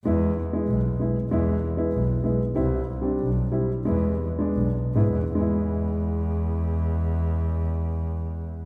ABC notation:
X:1
M:2/4
L:1/16
Q:1/4=88
K:none
V:1 name="Upright piano"
[^G,B,E]2 z [G,B,E] z2 [G,B,E] z | [^G,B,E]2 z [G,B,E] z2 [G,B,E] z | [G,CE]2 z [G,CD] z2 [G,CE] z | [^G,B,E]2 z [G,B,D] z2 [G,B,E] z |
[^G,B,E]8- | [^G,B,E]8 |]
V:2 name="Double bass" clef=bass
E,,4 B,,,4 | E,,4 B,,,4 | C,,4 B,,,4 | E,,4 B,,,2 ^G,, E,, |
E,,8- | E,,8 |]